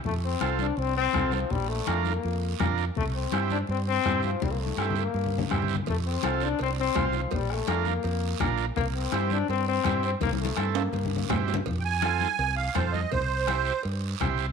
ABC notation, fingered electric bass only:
X:1
M:4/4
L:1/8
Q:1/4=165
K:F
V:1 name="Fingered electric bass" clef=bass
F,,2 C,,2 C,,2 C,,2 | B,,,2 F,,2 F,,2 F,,2 | C,,2 G,,2 G,,2 G,,2 | C,,2 G,,2 G,,2 G,,2 |
F,,2 C,,2 C,,2 C,,2 | B,,,2 F,,2 F,,2 B,,,2 | C,,2 G,,2 G,,2 G,,2 | C,,2 G,,2 G,,2 G,,2 |
F,,4 C,,2 F,,2 | C,,4 G,,2 C,,2 |]